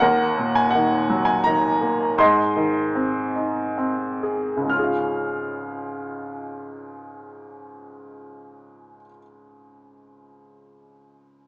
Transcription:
upright piano
0.00 D#2 A#4 F#5
0.38 A#2
0.55 G#5
0.71 F#5
0.75 D#3
1.10 F#3
1.25 G#5
1.44 D#3 A#5
1.81 A#3
2.18 G#2 D#5 C6
2.56 D#3
2.95 C4
3.36 D#4
3.78 C4
4.23 G#4
4.57 C#2
4.62 G#2
4.67 C#4 F6
4.73 F4
4.79 G#4
4.84 F5

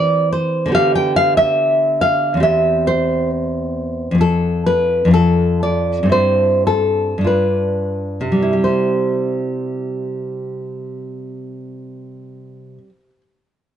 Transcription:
nylon-string guitar
Already playing: E3 C4 G4 D5
0.33 C5
0.66 D3 B3
0.72 G4 F5
0.95 G5
1.16 F5
1.37 E5
2.01 F5
2.34 E2 C4
2.40 G4 E5
2.87 C5
4.11 F2 C4
4.18 F4 A4
4.66 B4
5.05 F2 D4
5.11 F4 A4
5.63 D5
6.03 G2 C4
6.09 E4 C5
6.67 A4
7.18 G2 D4
7.24 F4 B4
8.21 C3
8.32 G3
8.42 E4
8.53 G4
8.64 C5

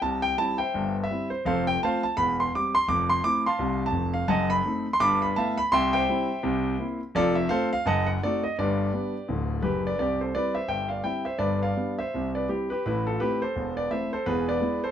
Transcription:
grand piano
0.02 C2 C3 A5
0.22 G5
0.37 G3 C4 E4 A5
0.58 C5 E5 G5
0.74 G1 G2
1.03 E5
1.10 G3 C4 E4
1.30 C5
1.45 F1 F2 A4 C5 F5
1.67 G5
1.83 A3 C4 F4 C5 F5 A5
2.03 A5
2.17 E1 E2 B5
2.40 C6
2.55 G3 C4 G4 D6
2.75 C6
2.88 F1 F2 D6
3.10 C6
3.24 A3 C4 E4 D6
3.46 F5 A5 C6
3.59 C2 C3
3.86 A5
3.92 F1 F2
4.14 F5
4.28 F#1 F#2 D#5 F#5 A5
4.50 B5
4.66 A3 C4 D#4
4.93 C6
5.00 G1 G2 A5 B5 D6
5.22 B5
5.36 A3 B3 E4 E5 F5 A5
5.57 B5
5.72 C2 C3 E5 G5 C6
5.93 C5 E5 G5
6.09 G3 C4 E4
6.43 C2 C3
6.78 A#3 C4 E4
7.15 F1 F2 F4 A4 D5
7.35 E5
7.49 A3 C4 F4 A4 C5 F5
7.73 F5
7.86 F#1 F#2 D#5 F#5 A5
8.06 F#5
8.22 A3 C4 D#4 F#4 A4 D5
8.44 D#5
8.58 G1 G2 G4 B4 D5
8.93 G3 B3 D4
9.28 D1 D2
9.62 F#1 F#2 G4 B4
9.87 B4 D5
9.99 C2 C3 G4 D5
10.21 A4 C5
10.35 G3 C4 E4 B4 D5
10.55 C5 E5
10.68 G1 G2 E5 G5
10.89 D5 F5
11.04 G3 C4 E4 E5 G5
11.25 C5 E5
11.38 G1 G2 B4 D5
11.63 D5 F5
11.77 G3 B3 D4
11.99 C5 E5
12.14 C2 C3
12.35 B4 D5
12.49 G3 C4 E4 G4
12.70 G4 B4
12.86 A1 A2 E4 B4
13.07 F4 A4
13.20 A3 C4 E4 G4 B4
13.42 A4 C5
13.56 E1 E2
13.77 B4 D5
13.90 A3 C4 E4 C5 E5
14.13 A4 C5
14.26 E1 E2 G#4 B4
14.49 B4 D5
14.61 G#3 B3 E4
14.84 A4 C5

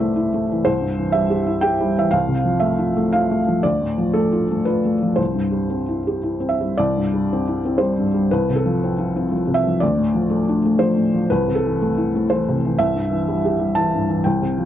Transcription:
felt piano
Already playing: C2 C3 E3 E4 B4 C5 D5 E5
0.00 A3
0.16 E4
0.34 A3
0.52 E3
0.65 C2 C5
0.81 G2
0.98 E3
1.12 G3 E5
1.30 G4
1.46 E4
1.61 G4 G5
1.81 G3
1.98 E3 E5
2.11 C2 F5
2.29 C3
2.45 F3
2.60 A3 E5
2.79 F4
2.97 A3
3.13 F4 F5
3.31 A3
3.48 F3
3.63 D2 D5
3.82 A2
3.98 F3
4.13 A3 A4
4.33 F4
4.51 A3
4.65 F4 B4
4.85 A3
5.02 F3
5.16 C2 C5
5.35 G2
5.52 G3
5.70 C4
5.89 E4
6.07 G4
6.23 E4
6.40 C4
6.49 E5
6.61 G3
6.78 C2 D5
6.97 G2
7.14 G3
7.33 C4
7.48 E4
7.65 C4
7.78 G3 C5
7.98 G2
8.14 G3
8.31 C2 B4
8.50 C3
8.56 A4
8.66 F3
8.84 C4
8.98 F4
9.16 C4
9.32 F3
9.47 C3
9.54 E5
9.67 F3
9.80 D2 D5
9.98 A2
10.14 F3
10.30 A3
10.49 D4
10.65 A3
10.79 F3 C5
10.98 A2
11.14 F3
11.30 C2 B4
11.48 C3
11.55 A4
11.66 E3
11.82 A3
11.98 E4
12.15 A3
12.30 E3 C5
12.49 C3
12.65 E3
12.79 C2 E5
12.95 G2
13.11 E3
13.28 G3
13.45 G4
13.59 G3
13.75 E3 A5
13.95 G2
14.09 E3
14.24 C2 G5
14.42 C3
14.58 F3

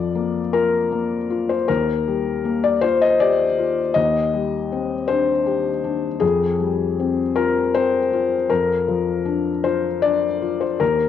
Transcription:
felt piano
Already playing: F2 F3 D5
0.15 A#3
0.53 F4 A#4
0.92 A#3
1.30 F4
1.49 C5
1.68 D#2 A#4
2.07 G3
2.45 A#3
2.64 D5
2.81 F4 C5
3.01 D#5
3.20 G4 D5
3.59 F4
3.94 D#2 D#5
4.34 G3
4.72 C4
5.08 D4 C5
5.46 G4
5.84 D4
6.20 F2 G#4
6.60 G3
6.99 C4
7.36 F4 A#4
7.75 C4 C5
8.13 F4
8.50 F2 A#4
8.88 F3
9.26 D4
9.64 F4 C5
10.02 D4 D5
10.42 F4
10.61 C5
10.80 D#2 A#4

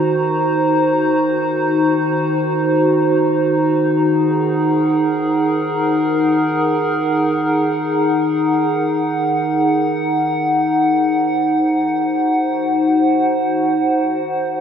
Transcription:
ambient pad
Already playing: D#3 D#4 F#4 C5 A#5
3.88 G#4
3.95 A#4
3.99 F#5
10.83 C5
11.82 F#4

